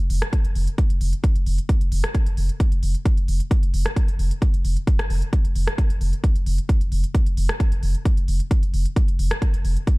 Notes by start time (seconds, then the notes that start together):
0.10 F1, open hi-hat
0.22 cross-stick, closed hi-hat
0.33 kick, closed hi-hat
0.45 F1, closed hi-hat
0.55 F1, open hi-hat
0.67 closed hi-hat
0.78 kick, closed hi-hat
0.90 F1, closed hi-hat
1.01 F1, open hi-hat
1.13 closed hi-hat
1.24 kick, closed hi-hat
1.36 F1, closed hi-hat
1.46 F1, open hi-hat
1.58 closed hi-hat
1.69 kick, closed hi-hat
1.81 F1, closed hi-hat
1.92 F1, open hi-hat
2.04 cross-stick
2.14 kick, closed hi-hat
2.26 F1, closed hi-hat
2.37 F1, open hi-hat
2.49 closed hi-hat
2.60 kick, closed hi-hat
2.72 F1, closed hi-hat
2.83 F1, open hi-hat
2.95 closed hi-hat
3.05 kick, closed hi-hat
3.17 F1, closed hi-hat
3.28 F1, open hi-hat
3.40 closed hi-hat
3.51 kick, closed hi-hat
3.63 F1, closed hi-hat
3.74 F1, open hi-hat
3.86 cross-stick, closed hi-hat
3.96 kick, closed hi-hat
4.08 F1, closed hi-hat
4.19 F1, open hi-hat
4.31 closed hi-hat
4.42 kick, closed hi-hat
4.54 F1, closed hi-hat
4.65 F1, open hi-hat
4.77 closed hi-hat
4.87 kick, closed hi-hat
4.99 F1, cross-stick, closed hi-hat
5.10 F1, open hi-hat
5.22 closed hi-hat
5.33 kick, closed hi-hat
5.45 F1, closed hi-hat
5.55 F1, open hi-hat
5.67 cross-stick, closed hi-hat
5.78 kick, closed hi-hat
5.90 F1, closed hi-hat
6.01 F1, open hi-hat
6.13 closed hi-hat
6.24 kick, closed hi-hat
6.35 F1, closed hi-hat
6.46 F1, open hi-hat
6.58 closed hi-hat
6.69 kick, closed hi-hat
6.81 F1, closed hi-hat
6.92 F1, open hi-hat
7.04 closed hi-hat
7.15 kick, closed hi-hat
7.26 F1, closed hi-hat
7.37 F1, open hi-hat
7.49 cross-stick, closed hi-hat
7.60 kick, closed hi-hat
7.72 F1, closed hi-hat
7.83 F1, open hi-hat
7.95 closed hi-hat
8.05 kick, closed hi-hat
8.17 F1, closed hi-hat
8.28 F1, open hi-hat
8.40 closed hi-hat
8.51 kick, closed hi-hat
8.63 F1, closed hi-hat
8.74 F1, open hi-hat
8.86 closed hi-hat
8.96 kick, closed hi-hat
9.08 F1, closed hi-hat
9.19 F1, open hi-hat
9.31 cross-stick, closed hi-hat
9.42 kick, closed hi-hat
9.54 F1, closed hi-hat
9.65 F1, open hi-hat
9.77 closed hi-hat
9.87 kick, closed hi-hat